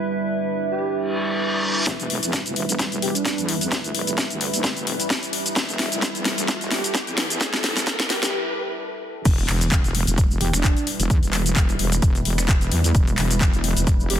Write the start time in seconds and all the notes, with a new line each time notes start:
Already playing: G3 D4 E4 B4 E5
0.71 G4
0.95 reverse cymbal
1.87 E1 G3 E4 B4, kick, snare, closed hi-hat, riser, shaker
2.00 closed hi-hat, shaker
2.10 open hi-hat
2.23 E1, closed hi-hat, shaker
2.33 kick, snare, closed hi-hat, shaker
2.46 closed hi-hat, shaker
2.56 E1, open hi-hat
2.69 closed hi-hat, shaker
2.79 E1, kick, snare, closed hi-hat, shaker
2.92 closed hi-hat, shaker
3.02 G4, open hi-hat
3.15 D4, closed hi-hat, shaker
3.25 kick, snare, closed hi-hat, shaker
3.38 E2, closed hi-hat, shaker
3.49 open hi-hat
3.61 closed hi-hat, shaker
3.72 D2, kick, snare, closed hi-hat, shaker
3.84 closed hi-hat, shaker
3.95 F1, open hi-hat
4.07 closed hi-hat, shaker
4.18 kick, snare, closed hi-hat, shaker
4.30 D2, closed hi-hat, shaker
4.41 open hi-hat
4.54 closed hi-hat, shaker
4.64 kick, snare, closed hi-hat, shaker
4.77 F1, closed hi-hat, shaker
4.87 open hi-hat
5.00 closed hi-hat, shaker
5.10 kick, snare, closed hi-hat, shaker
5.23 closed hi-hat, shaker
5.33 open hi-hat
5.46 closed hi-hat, shaker
5.56 E1 A4, kick, snare, closed hi-hat, shaker
5.69 closed hi-hat, shaker
5.79 snare, open hi-hat
5.92 E1, closed hi-hat, shaker
6.02 kick, snare, closed hi-hat, shaker
6.15 closed hi-hat, shaker
6.25 E1, snare, open hi-hat
6.38 closed hi-hat, shaker
6.48 E1, kick, snare, closed hi-hat, shaker
6.61 closed hi-hat, shaker
6.71 G4, snare, open hi-hat
6.84 closed hi-hat, shaker
6.95 kick, snare, closed hi-hat, shaker
7.07 E2, closed hi-hat, shaker
7.18 snare, open hi-hat
7.30 closed hi-hat, shaker
7.41 D2, kick, snare, closed hi-hat, shaker
7.54 snare, closed hi-hat, shaker
7.64 F1, snare, open hi-hat
7.77 snare, closed hi-hat, shaker
7.87 kick, snare, closed hi-hat, shaker
8.00 E1, snare, closed hi-hat, shaker
8.10 G4, snare, open hi-hat
8.23 snare, closed hi-hat, shaker
9.25 E1 G3 E4 B4, kick, closed hi-hat, crash, impact, shaker
9.38 closed hi-hat, shaker
9.48 E1, finger snap, clap, open hi-hat
9.61 closed hi-hat, shaker
9.72 kick, clap, closed hi-hat, shaker
9.84 E1, closed hi-hat, shaker
9.95 open hi-hat
10.07 E1, closed hi-hat, shaker
10.18 kick, closed hi-hat, shaker
10.31 shaker
10.41 E1 G4, open hi-hat
10.53 E1 D4, finger snap, closed hi-hat, shaker
10.64 kick, clap, closed hi-hat, shaker
10.77 closed hi-hat, shaker
10.87 open hi-hat
11.00 E1, closed hi-hat, shaker
11.10 E2, kick, closed hi-hat, shaker
11.23 E1, closed hi-hat, shaker
11.33 finger snap, clap, open hi-hat
11.46 closed hi-hat, shaker
11.56 E1, kick, clap, closed hi-hat, shaker
11.69 closed hi-hat, shaker
11.79 E1, open hi-hat
11.92 closed hi-hat, shaker
12.02 E1, kick, closed hi-hat, shaker
12.15 closed hi-hat, shaker
12.25 E1, open hi-hat
12.38 finger snap, closed hi-hat, shaker
12.48 kick, clap, closed hi-hat, shaker
12.61 closed hi-hat, shaker
12.71 E2, open hi-hat
12.84 closed hi-hat, shaker
12.95 E1, kick, closed hi-hat, shaker
13.07 closed hi-hat, shaker
13.18 E1, finger snap, clap, open hi-hat
13.31 closed hi-hat, shaker
13.41 kick, clap, closed hi-hat, shaker
13.54 E1, closed hi-hat, shaker
13.64 open hi-hat
13.77 E1, closed hi-hat, shaker
13.87 kick, closed hi-hat, shaker
14.00 shaker
14.10 E1 G4, open hi-hat